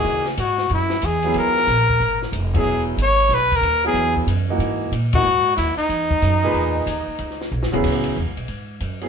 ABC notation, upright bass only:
X:1
M:4/4
L:1/8
Q:"Swing" 1/4=185
K:C#dor
V:1 name="Upright bass" clef=bass
C,2 G,,2 F,,2 E,,2 | C,,2 A,,,2 G,,,2 ^E,,,2 | E,,,2 G,,,2 B,,,2 D,,2 | E,,2 F,,2 G,,2 A,,2 |
G,,2 D,, z E,,2 F,,2 | E,,2 D,, z C,,2 (3B,,, G,,, E,,, | C,,2 (3E,, C,, B,,, G,,2 F,,2 |]